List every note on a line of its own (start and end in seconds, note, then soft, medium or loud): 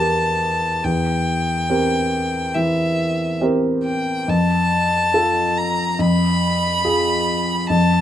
0.00 0.84 E2 soft
0.00 0.80 G4 soft
0.00 0.80 A#4 soft
0.00 0.85 A5 medium
0.84 1.67 E2 soft
0.84 2.56 G5 medium
1.70 2.52 C4 soft
1.70 2.52 G4 soft
1.70 2.52 A#4 soft
2.54 3.94 E3 soft
2.54 3.41 E5 medium
3.41 4.24 C4 soft
3.41 4.24 G4 soft
3.41 4.25 A#4 soft
3.84 4.30 G5 medium
4.28 5.12 F2 soft
4.28 5.59 A5 medium
5.14 5.96 F4 soft
5.14 5.96 A4 soft
5.57 6.02 A#5 medium
5.99 6.82 F2 soft
5.99 7.69 B5 medium
6.85 7.65 F4 soft
6.85 7.65 G#4 soft
7.69 8.01 F2 soft
7.69 8.01 A5 medium